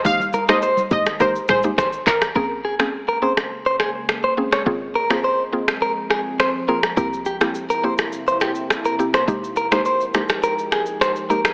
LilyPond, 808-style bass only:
\new Staff \with { instrumentName = "808-style bass" } { \clef bass \time 4/4 \key f \minor \tempo 4 = 104 f,,8. ees,,8. aes,,8. r4 r16 aes,,8 | bes,,1 | aes,,1 | c,1 |
f,,1 | }